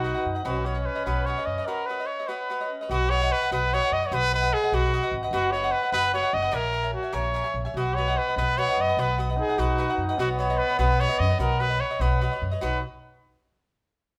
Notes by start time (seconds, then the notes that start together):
Already playing: B1 D#4 F#4
0.04 F#4 B4 D#5 F#5
0.14 B4 D#5 F#5
0.26 F#2
0.35 B4 D#5 F#5
0.43 B1 C#4 F#4 B4 C#5 D#5
0.65 F#4 B4 C#5 D#5
0.75 B4 C#5 D#5
0.80 C#5
0.86 B4
0.95 B4 C#5 D#5
1.05 B1 F#4 B4 C#5 D#5
1.26 F#4 B4 C#5 D#5
1.38 B4 C#5 D#5
1.46 F#2 D#5
1.58 B4 C#5 D#5
1.66 F#4 A#4 B4 C#5 D#5
1.86 F#4 B4
1.90 C#5 D#5
2.00 B4 C#5 D#5
2.06 C#5
2.19 B4 C#5 D#5
2.28 F#4 B4 C#5 D#5
2.50 F#4 B4 C#5 D#5
2.61 B4 C#5 D#5
2.68 C#4
2.81 B4 C#5 D#5
2.90 B1 F#4 B4 D#5 F#5
3.10 F#4 B4 C#5 D#5 F#5
3.22 B4 D#5 F#5
3.32 B4
3.42 B4 D#5 F#5
3.51 B1 F#4 B4 D#5 F#5
3.73 F#4 B4 C#5 D#5 F#5
3.82 B4 D#5 F#5
3.92 F#2 D#5
4.02 B4 D#5 F#5
4.06 C#5
4.11 B1 F#4 B4 D#5 F#5
4.33 F#4 B4 D#5 F#5
4.42 B4 D#5 F#5
4.53 G#4
4.63 B4 D#5 F#5
4.72 B1 F#4 B4 D#5 F#5
4.93 F#4 B4 D#5 F#5
5.03 B4 D#5 F#5
5.11 G#1
5.23 B4 D#5 F#5
5.31 F#1 F#4 B4 D#5 F#5
5.51 F#4 B4 C#5 D#5
5.55 F#5
5.64 B4 D#5 F#5
5.72 B4
5.83 B4 D#5 F#5
5.92 F#1 F#4 B4 D#5 F#5
6.14 F#4 B4 C#5 D#5 F#5
6.23 B4 D#5 F#5
6.33 F#1 D#5
6.42 B4 D#5 F#5
6.51 A#1 A#4 C#5 E5 G#5
6.73 A#4 C#5 E5 G#5
6.83 C#5 E5 G#5
6.94 F#4
7.03 C#5 E5 G#5
7.13 A#1 A#4 C#5 E5 G#5
7.34 A#4 C#5 E5 G#5
7.44 C#5 E5 G#5
7.54 A#1
7.65 C#5 E5 G#5
7.74 B1 B3 F#4 B4 D#5 F#5
7.95 F#4 B4 C#5 D#5 F#5
8.08 B4 D#5 F#5
8.17 B4
8.28 B4 D#5 F#5
8.36 B1 F#4 B4 D#5 F#5
8.58 F#4 B4 C#5 D#5 F#5
8.69 B4 D#5 F#5
8.77 F#2 D#5
8.88 B4 D#5 F#5
8.97 B1 F#4 B4 D#5 F#5
9.18 F#4 B4 D#5 F#5
9.30 B4 D#5 F#5
9.37 D#4 G#4
9.49 B4 D#5 F#5
9.58 B1 F#4 B4 D#5 F#5
9.78 F#4 B4 D#5 F#5
9.90 B4 D#5 F#5
9.98 F#2
10.09 B4 D#5 F#5
10.18 B1 B3 F#4 B4 C#5 D#5
10.39 F#4 B4 C#5 D#5
10.50 B4 C#5 D#5
10.58 B4
10.69 B4 C#5 D#5
10.79 B1 F#4 B4 C#5 D#5
10.99 F#4 B4 C#5 D#5
11.08 B4 C#5 D#5
11.19 F#2 D#5
11.29 B4 C#5 D#5
11.39 B1 F#4 A#4 B4 C#5 D#5
11.60 F#4 B4 C#5 D#5
11.70 B4 C#5 D#5
11.80 C#5
11.91 B4 C#5 D#5
11.99 B1 F#4 B4 C#5 D#5
12.21 F#4 B4 C#5 D#5
12.32 B4 C#5 D#5
12.42 F#2
12.51 B4 C#5 D#5
12.61 B1 D#4 F#4 B4 C#5 D#5